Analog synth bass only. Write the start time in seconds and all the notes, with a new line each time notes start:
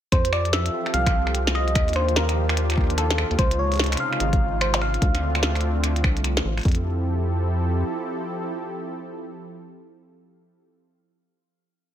0.12 F2
0.94 C2
1.75 D#2
3.31 D#2
3.39 C#2
4.20 G#1
5.02 D2
6.04 C2
6.45 A1
6.65 F2